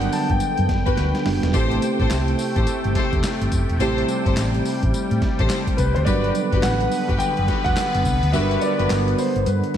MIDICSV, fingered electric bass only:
0, 0, Header, 1, 3, 480
1, 0, Start_track
1, 0, Tempo, 566038
1, 1306, Time_signature, 4, 2, 24, 8
1, 8287, End_track
2, 0, Start_track
2, 0, Title_t, "Fingered electric bass"
2, 0, Program_c, 0, 33
2, 256, Note_on_c, 0, 31, 99
2, 328, Note_off_c, 0, 31, 0
2, 498, Note_on_c, 0, 42, 87
2, 569, Note_off_c, 0, 42, 0
2, 590, Note_on_c, 0, 30, 99
2, 706, Note_off_c, 0, 30, 0
2, 737, Note_on_c, 0, 31, 98
2, 809, Note_off_c, 0, 31, 0
2, 828, Note_on_c, 0, 38, 100
2, 945, Note_off_c, 0, 38, 0
2, 1067, Note_on_c, 0, 30, 86
2, 1184, Note_off_c, 0, 30, 0
2, 1215, Note_on_c, 0, 28, 93
2, 1287, Note_off_c, 0, 28, 0
2, 1310, Note_on_c, 0, 33, 106
2, 1498, Note_off_c, 0, 33, 0
2, 1696, Note_on_c, 0, 33, 83
2, 1768, Note_off_c, 0, 33, 0
2, 1785, Note_on_c, 0, 36, 94
2, 1975, Note_off_c, 0, 36, 0
2, 2176, Note_on_c, 0, 33, 94
2, 2248, Note_off_c, 0, 33, 0
2, 2418, Note_on_c, 0, 31, 85
2, 2489, Note_off_c, 0, 31, 0
2, 2657, Note_on_c, 0, 28, 92
2, 2728, Note_off_c, 0, 28, 0
2, 2895, Note_on_c, 0, 31, 88
2, 2967, Note_off_c, 0, 31, 0
2, 2987, Note_on_c, 0, 30, 94
2, 3104, Note_off_c, 0, 30, 0
2, 3137, Note_on_c, 0, 28, 98
2, 3227, Note_off_c, 0, 28, 0
2, 3227, Note_on_c, 0, 33, 112
2, 3417, Note_off_c, 0, 33, 0
2, 3614, Note_on_c, 0, 31, 94
2, 3687, Note_off_c, 0, 31, 0
2, 3706, Note_on_c, 0, 33, 97
2, 3896, Note_off_c, 0, 33, 0
2, 4097, Note_on_c, 0, 33, 108
2, 4168, Note_off_c, 0, 33, 0
2, 4336, Note_on_c, 0, 45, 98
2, 4408, Note_off_c, 0, 45, 0
2, 4575, Note_on_c, 0, 33, 102
2, 4648, Note_off_c, 0, 33, 0
2, 4908, Note_on_c, 0, 36, 97
2, 5025, Note_off_c, 0, 36, 0
2, 5059, Note_on_c, 0, 38, 101
2, 5130, Note_off_c, 0, 38, 0
2, 5146, Note_on_c, 0, 31, 124
2, 5336, Note_off_c, 0, 31, 0
2, 5534, Note_on_c, 0, 31, 105
2, 5607, Note_off_c, 0, 31, 0
2, 5634, Note_on_c, 0, 33, 109
2, 5820, Note_off_c, 0, 33, 0
2, 6018, Note_on_c, 0, 31, 102
2, 6089, Note_off_c, 0, 31, 0
2, 6264, Note_on_c, 0, 30, 97
2, 6333, Note_off_c, 0, 30, 0
2, 6499, Note_on_c, 0, 28, 88
2, 6569, Note_off_c, 0, 28, 0
2, 6741, Note_on_c, 0, 30, 90
2, 6811, Note_off_c, 0, 30, 0
2, 6828, Note_on_c, 0, 36, 89
2, 6945, Note_off_c, 0, 36, 0
2, 6979, Note_on_c, 0, 38, 91
2, 7069, Note_on_c, 0, 31, 105
2, 7082, Note_off_c, 0, 38, 0
2, 7258, Note_off_c, 0, 31, 0
2, 7458, Note_on_c, 0, 30, 77
2, 7529, Note_off_c, 0, 30, 0
2, 7554, Note_on_c, 0, 31, 100
2, 7741, Note_off_c, 0, 31, 0
2, 7937, Note_on_c, 0, 31, 98
2, 8009, Note_off_c, 0, 31, 0
2, 8028, Note_on_c, 0, 43, 103
2, 8145, Note_off_c, 0, 43, 0
2, 8287, End_track
3, 0, Start_track
3, 0, Title_t, "Muted fingered electric bass strokes"
3, 2273, Note_on_c, 9, 29, 46
3, 2358, Note_off_c, 9, 29, 0
3, 6115, Note_on_c, 9, 29, 48
3, 6199, Note_off_c, 9, 29, 0
3, 8287, End_track
0, 0, End_of_file